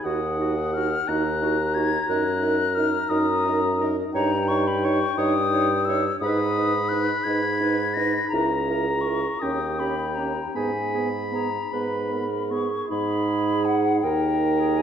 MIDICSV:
0, 0, Header, 1, 6, 480
1, 0, Start_track
1, 0, Key_signature, -6, "minor"
1, 0, Tempo, 677966
1, 38, Time_signature, 6, 3, 24, 8
1, 1957, Tempo, 692042
1, 2920, Key_signature, 5, "minor"
1, 4837, Tempo, 709220
1, 5797, Tempo, 730816
1, 6757, Tempo, 777202
1, 8677, Tempo, 755668
1, 9895, End_track
2, 0, Start_track
2, 0, Title_t, "Flute"
2, 0, Program_c, 0, 73
2, 29, Note_on_c, 0, 87, 76
2, 522, Note_on_c, 0, 89, 91
2, 533, Note_off_c, 0, 87, 0
2, 764, Note_on_c, 0, 90, 90
2, 775, Note_off_c, 0, 89, 0
2, 1236, Note_on_c, 0, 92, 98
2, 1246, Note_off_c, 0, 90, 0
2, 1476, Note_off_c, 0, 92, 0
2, 1482, Note_on_c, 0, 90, 95
2, 1947, Note_on_c, 0, 89, 104
2, 1957, Note_off_c, 0, 90, 0
2, 2186, Note_on_c, 0, 87, 101
2, 2196, Note_off_c, 0, 89, 0
2, 2727, Note_off_c, 0, 87, 0
2, 2912, Note_on_c, 0, 82, 96
2, 3148, Note_on_c, 0, 85, 98
2, 3159, Note_off_c, 0, 82, 0
2, 3282, Note_on_c, 0, 83, 86
2, 3292, Note_off_c, 0, 85, 0
2, 3400, Note_on_c, 0, 85, 99
2, 3410, Note_off_c, 0, 83, 0
2, 3631, Note_on_c, 0, 87, 106
2, 3641, Note_off_c, 0, 85, 0
2, 4096, Note_on_c, 0, 88, 95
2, 4107, Note_off_c, 0, 87, 0
2, 4334, Note_off_c, 0, 88, 0
2, 4338, Note_on_c, 0, 87, 97
2, 4816, Note_on_c, 0, 90, 93
2, 4827, Note_off_c, 0, 87, 0
2, 5054, Note_on_c, 0, 92, 92
2, 5064, Note_off_c, 0, 90, 0
2, 5529, Note_on_c, 0, 94, 92
2, 5539, Note_off_c, 0, 92, 0
2, 5761, Note_off_c, 0, 94, 0
2, 5765, Note_on_c, 0, 82, 79
2, 6241, Note_on_c, 0, 85, 80
2, 6251, Note_off_c, 0, 82, 0
2, 6493, Note_on_c, 0, 87, 81
2, 6503, Note_off_c, 0, 85, 0
2, 6755, Note_on_c, 0, 83, 73
2, 6765, Note_off_c, 0, 87, 0
2, 6976, Note_on_c, 0, 82, 64
2, 6985, Note_off_c, 0, 83, 0
2, 7217, Note_off_c, 0, 82, 0
2, 7221, Note_on_c, 0, 80, 61
2, 7552, Note_off_c, 0, 80, 0
2, 7702, Note_on_c, 0, 82, 70
2, 7943, Note_on_c, 0, 83, 65
2, 7952, Note_off_c, 0, 82, 0
2, 8428, Note_on_c, 0, 85, 70
2, 8438, Note_off_c, 0, 83, 0
2, 8669, Note_off_c, 0, 85, 0
2, 8672, Note_on_c, 0, 83, 84
2, 9152, Note_on_c, 0, 78, 93
2, 9161, Note_off_c, 0, 83, 0
2, 9392, Note_on_c, 0, 79, 81
2, 9401, Note_off_c, 0, 78, 0
2, 9868, Note_on_c, 0, 80, 89
2, 9878, Note_off_c, 0, 79, 0
2, 9895, Note_off_c, 0, 80, 0
2, 9895, End_track
3, 0, Start_track
3, 0, Title_t, "Oboe"
3, 0, Program_c, 1, 68
3, 32, Note_on_c, 1, 78, 74
3, 764, Note_on_c, 1, 82, 82
3, 774, Note_off_c, 1, 78, 0
3, 2185, Note_off_c, 1, 82, 0
3, 2189, Note_on_c, 1, 82, 83
3, 2718, Note_off_c, 1, 82, 0
3, 2913, Note_on_c, 1, 79, 85
3, 4324, Note_off_c, 1, 79, 0
3, 4363, Note_on_c, 1, 83, 96
3, 5772, Note_off_c, 1, 83, 0
3, 5803, Note_on_c, 1, 82, 80
3, 6511, Note_on_c, 1, 79, 68
3, 6521, Note_off_c, 1, 82, 0
3, 7220, Note_off_c, 1, 79, 0
3, 7224, Note_on_c, 1, 83, 64
3, 8290, Note_off_c, 1, 83, 0
3, 9404, Note_on_c, 1, 70, 75
3, 9895, Note_off_c, 1, 70, 0
3, 9895, End_track
4, 0, Start_track
4, 0, Title_t, "Clarinet"
4, 0, Program_c, 2, 71
4, 37, Note_on_c, 2, 66, 60
4, 148, Note_off_c, 2, 66, 0
4, 286, Note_on_c, 2, 66, 52
4, 396, Note_off_c, 2, 66, 0
4, 535, Note_on_c, 2, 66, 56
4, 643, Note_off_c, 2, 66, 0
4, 777, Note_on_c, 2, 66, 53
4, 883, Note_off_c, 2, 66, 0
4, 1012, Note_on_c, 2, 66, 60
4, 1118, Note_off_c, 2, 66, 0
4, 1242, Note_on_c, 2, 66, 63
4, 1349, Note_off_c, 2, 66, 0
4, 1479, Note_on_c, 2, 70, 71
4, 1586, Note_off_c, 2, 70, 0
4, 1717, Note_on_c, 2, 70, 67
4, 1825, Note_off_c, 2, 70, 0
4, 1960, Note_on_c, 2, 70, 61
4, 2066, Note_off_c, 2, 70, 0
4, 2194, Note_on_c, 2, 70, 65
4, 2303, Note_off_c, 2, 70, 0
4, 2435, Note_on_c, 2, 70, 68
4, 2545, Note_off_c, 2, 70, 0
4, 2681, Note_on_c, 2, 70, 70
4, 2789, Note_off_c, 2, 70, 0
4, 2917, Note_on_c, 2, 73, 77
4, 3026, Note_off_c, 2, 73, 0
4, 3155, Note_on_c, 2, 73, 65
4, 3263, Note_off_c, 2, 73, 0
4, 3399, Note_on_c, 2, 73, 71
4, 3506, Note_off_c, 2, 73, 0
4, 3634, Note_on_c, 2, 73, 71
4, 3741, Note_off_c, 2, 73, 0
4, 3877, Note_on_c, 2, 73, 59
4, 3984, Note_off_c, 2, 73, 0
4, 4125, Note_on_c, 2, 73, 68
4, 4231, Note_off_c, 2, 73, 0
4, 4373, Note_on_c, 2, 71, 71
4, 4477, Note_off_c, 2, 71, 0
4, 4603, Note_on_c, 2, 71, 61
4, 4709, Note_off_c, 2, 71, 0
4, 4846, Note_on_c, 2, 71, 62
4, 4950, Note_off_c, 2, 71, 0
4, 5081, Note_on_c, 2, 71, 58
4, 5187, Note_off_c, 2, 71, 0
4, 5320, Note_on_c, 2, 71, 63
4, 5427, Note_off_c, 2, 71, 0
4, 5562, Note_on_c, 2, 71, 64
4, 5669, Note_off_c, 2, 71, 0
4, 5804, Note_on_c, 2, 70, 61
4, 5908, Note_off_c, 2, 70, 0
4, 6040, Note_on_c, 2, 70, 54
4, 6145, Note_off_c, 2, 70, 0
4, 6272, Note_on_c, 2, 70, 55
4, 6377, Note_off_c, 2, 70, 0
4, 6521, Note_on_c, 2, 67, 53
4, 6626, Note_off_c, 2, 67, 0
4, 6763, Note_on_c, 2, 67, 54
4, 6861, Note_off_c, 2, 67, 0
4, 6996, Note_on_c, 2, 67, 48
4, 7095, Note_off_c, 2, 67, 0
4, 7231, Note_on_c, 2, 68, 48
4, 7330, Note_off_c, 2, 68, 0
4, 7466, Note_on_c, 2, 68, 44
4, 7565, Note_off_c, 2, 68, 0
4, 7713, Note_on_c, 2, 68, 44
4, 7811, Note_off_c, 2, 68, 0
4, 7950, Note_on_c, 2, 71, 52
4, 8196, Note_on_c, 2, 70, 59
4, 8206, Note_off_c, 2, 71, 0
4, 8438, Note_on_c, 2, 68, 58
4, 8447, Note_off_c, 2, 70, 0
4, 8675, Note_off_c, 2, 68, 0
4, 8678, Note_on_c, 2, 68, 73
4, 9398, Note_on_c, 2, 70, 59
4, 9408, Note_off_c, 2, 68, 0
4, 9751, Note_on_c, 2, 68, 65
4, 9761, Note_off_c, 2, 70, 0
4, 9895, Note_off_c, 2, 68, 0
4, 9895, End_track
5, 0, Start_track
5, 0, Title_t, "French horn"
5, 0, Program_c, 3, 60
5, 30, Note_on_c, 3, 63, 52
5, 142, Note_off_c, 3, 63, 0
5, 276, Note_on_c, 3, 63, 50
5, 387, Note_off_c, 3, 63, 0
5, 519, Note_on_c, 3, 63, 52
5, 630, Note_off_c, 3, 63, 0
5, 768, Note_on_c, 3, 63, 62
5, 876, Note_off_c, 3, 63, 0
5, 1005, Note_on_c, 3, 63, 50
5, 1112, Note_off_c, 3, 63, 0
5, 1249, Note_on_c, 3, 63, 62
5, 1354, Note_off_c, 3, 63, 0
5, 1483, Note_on_c, 3, 63, 63
5, 1589, Note_off_c, 3, 63, 0
5, 1721, Note_on_c, 3, 63, 53
5, 1828, Note_off_c, 3, 63, 0
5, 1956, Note_on_c, 3, 63, 56
5, 2063, Note_off_c, 3, 63, 0
5, 2198, Note_on_c, 3, 63, 69
5, 2306, Note_off_c, 3, 63, 0
5, 2435, Note_on_c, 3, 63, 58
5, 2545, Note_off_c, 3, 63, 0
5, 2675, Note_on_c, 3, 63, 57
5, 2784, Note_off_c, 3, 63, 0
5, 2921, Note_on_c, 3, 63, 68
5, 3029, Note_off_c, 3, 63, 0
5, 3155, Note_on_c, 3, 63, 59
5, 3263, Note_off_c, 3, 63, 0
5, 3402, Note_on_c, 3, 63, 62
5, 3508, Note_off_c, 3, 63, 0
5, 3633, Note_on_c, 3, 63, 77
5, 3740, Note_off_c, 3, 63, 0
5, 3869, Note_on_c, 3, 63, 50
5, 3978, Note_off_c, 3, 63, 0
5, 4120, Note_on_c, 3, 63, 58
5, 4227, Note_off_c, 3, 63, 0
5, 4361, Note_on_c, 3, 63, 64
5, 4469, Note_off_c, 3, 63, 0
5, 4601, Note_on_c, 3, 63, 61
5, 4708, Note_off_c, 3, 63, 0
5, 4833, Note_on_c, 3, 63, 54
5, 4940, Note_off_c, 3, 63, 0
5, 5063, Note_on_c, 3, 63, 64
5, 5172, Note_off_c, 3, 63, 0
5, 5303, Note_on_c, 3, 63, 56
5, 5412, Note_off_c, 3, 63, 0
5, 5547, Note_on_c, 3, 63, 63
5, 5656, Note_off_c, 3, 63, 0
5, 5797, Note_on_c, 3, 64, 64
5, 5902, Note_off_c, 3, 64, 0
5, 6029, Note_on_c, 3, 64, 52
5, 6134, Note_off_c, 3, 64, 0
5, 6262, Note_on_c, 3, 64, 48
5, 6367, Note_off_c, 3, 64, 0
5, 6512, Note_on_c, 3, 61, 56
5, 6617, Note_off_c, 3, 61, 0
5, 6754, Note_on_c, 3, 61, 44
5, 6853, Note_off_c, 3, 61, 0
5, 6992, Note_on_c, 3, 61, 47
5, 7090, Note_off_c, 3, 61, 0
5, 7219, Note_on_c, 3, 59, 49
5, 7318, Note_off_c, 3, 59, 0
5, 7461, Note_on_c, 3, 59, 47
5, 7559, Note_off_c, 3, 59, 0
5, 7696, Note_on_c, 3, 59, 43
5, 7794, Note_off_c, 3, 59, 0
5, 7940, Note_on_c, 3, 59, 48
5, 8039, Note_off_c, 3, 59, 0
5, 8182, Note_on_c, 3, 59, 43
5, 8281, Note_off_c, 3, 59, 0
5, 8431, Note_on_c, 3, 59, 47
5, 8530, Note_off_c, 3, 59, 0
5, 8671, Note_on_c, 3, 63, 70
5, 9372, Note_off_c, 3, 63, 0
5, 9391, Note_on_c, 3, 63, 73
5, 9895, Note_off_c, 3, 63, 0
5, 9895, End_track
6, 0, Start_track
6, 0, Title_t, "Bassoon"
6, 0, Program_c, 4, 70
6, 37, Note_on_c, 4, 39, 69
6, 684, Note_off_c, 4, 39, 0
6, 767, Note_on_c, 4, 39, 69
6, 1395, Note_off_c, 4, 39, 0
6, 1479, Note_on_c, 4, 42, 68
6, 2108, Note_off_c, 4, 42, 0
6, 2192, Note_on_c, 4, 42, 74
6, 2834, Note_off_c, 4, 42, 0
6, 2915, Note_on_c, 4, 43, 79
6, 3549, Note_off_c, 4, 43, 0
6, 3633, Note_on_c, 4, 43, 78
6, 4268, Note_off_c, 4, 43, 0
6, 4351, Note_on_c, 4, 44, 78
6, 4986, Note_off_c, 4, 44, 0
6, 5070, Note_on_c, 4, 44, 66
6, 5708, Note_off_c, 4, 44, 0
6, 5794, Note_on_c, 4, 37, 71
6, 6423, Note_off_c, 4, 37, 0
6, 6512, Note_on_c, 4, 39, 54
6, 7144, Note_off_c, 4, 39, 0
6, 7231, Note_on_c, 4, 44, 57
6, 7865, Note_off_c, 4, 44, 0
6, 7956, Note_on_c, 4, 44, 48
6, 8595, Note_off_c, 4, 44, 0
6, 8682, Note_on_c, 4, 44, 74
6, 9378, Note_off_c, 4, 44, 0
6, 9397, Note_on_c, 4, 39, 67
6, 9895, Note_off_c, 4, 39, 0
6, 9895, End_track
0, 0, End_of_file